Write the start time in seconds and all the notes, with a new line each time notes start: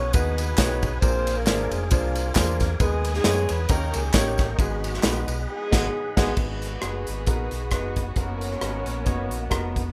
Already playing: B1 B3 C#4 D#4 B4 C#5 F#5 G#5 D#6
0.13 D#2 B3 D#4 F#4 G#4 B4, kick, ride, tambourine
0.38 ride, tambourine
0.57 B1 B3 D#4 F#4 G#4 C#5, kick, snare, clap, ride, tambourine
0.82 kick, ride, tambourine
1.00 A#1 A#2 A#3 C4 D4 F4 G#4 A#4 C5 F5 D6, kick, ride, tambourine
1.27 ride, tambourine
1.36 A#3 D4 F4 A#4
1.47 G#1 A#3 D4 F4 G#4 C5, snare, clap, ride, tambourine
1.70 F1 G#3 G#4, ride, tambourine
1.90 C2 F3 G#3 A#3 D4 F4 G#4 C5, kick, ride, tambourine
2.15 ride, tambourine
2.35 E2 A#3 D4 F4 G#4 C5, kick, snare, clap, ride, tambourine
2.60 kick, snare, ride, tambourine
2.80 D#2 D#3 G#3 B3 D#4 G#4 B4 D#5 D#6, kick, ride, tambourine
3.04 ride, tambourine
3.14 G#3 B3 D#4 G#4, snare
3.24 F#2 G#3 B3 D#4 G#4 C#5, snare, clap, ride, tambourine
3.49 E2 B3 B4, ride, tambourine
3.69 D#2 D#3 A#3 C#4 D#4 G4 A#4 D#5 G5 C#6, kick, ride, tambourine
3.94 C#2 G#3 G#4, ride, tambourine
4.13 A1 G3 A#3 C#4 D#4 G4 C#5, kick, snare, clap, ride, tambourine
4.38 kick, snare, ride, tambourine
4.49 A#3 A#4
4.59 G#1 G#2 F#3 G#3 B3 D#4 F#4 G#4 F#5 B5, kick, ride, tambourine
4.84 ride, tambourine
4.94 snare
5.02 A#1 G#3 B3 D#4 F#4 B4, snare, clap, ride, tambourine
5.27 B1, ride, tambourine
5.47 G#3 B3 D#4 G#4
5.71 G#1 G#3 B3 D#4 F#4 G#4, kick, snare, crash
6.17 G#1 G#3 B3 D#4 F#4 G#4, kick, snare, crash
6.37 G#1 G#2 B3 D#4 F#4 G#4 B4, kick, crash
6.62 closed hi-hat
6.82 F#1 B3 D#4 F#4 G#4, cross-stick, closed hi-hat
7.07 G#1, closed hi-hat
7.27 A#1 B3 D#4 F#4 A#4, kick, closed hi-hat
7.51 B1, closed hi-hat
7.71 F#1 B3 D#4 F#4 B4, kick, cross-stick, closed hi-hat
7.96 kick, cross-stick, closed hi-hat
8.16 F#1 A#3 B3 C#4 D#4 F#4 A#4 C#5, kick, closed hi-hat
8.41 closed hi-hat
8.52 cross-stick
8.61 G#1 B3 D#4 F#4 A#4, cross-stick, closed hi-hat
8.86 A#1, closed hi-hat
9.05 F#1 B3 D#4 F#4 C#5, kick, closed hi-hat
9.31 A#1 D#5, closed hi-hat
9.42 F#5
9.50 F1 B3 D#4 F#4 A#4 A#5, kick, cross-stick, closed hi-hat
9.76 kick, closed hi-hat